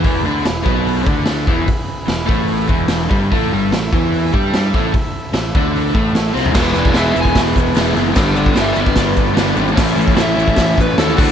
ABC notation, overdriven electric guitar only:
X:1
M:4/4
L:1/8
Q:1/4=148
K:Alyd
V:1 name="Overdriven electric guitar"
[E,,E,] [=D,=D] E,, [B,,B,]2 [D,D]2 [E,,E,] | z2 E,, [A,,A,]2 [E,,E,]2 [=G,,=G,] | [A,,A,] [=G,,=G,] A,, [E,E]2 [G,=G]2 [A,,A,] | z2 A,, [=D,=D]2 [A,,A,]2 [=C,=C] |
[E,G,B,E] [G,B,E] [E,G,B,E] [G,B,E]3 [E,G,B,E] [G,B,E] | [=G,,=D,=G,B,=D] [G,B,D] [D,G,B,D] [G,B,D]3 [G,,D,G,B,D] [G,B,D] | [A,,E,A,CE] [A,CE] [E,A,CE] [A,CE]3 [A,,E,A,CE] [=D,A,=DF] |]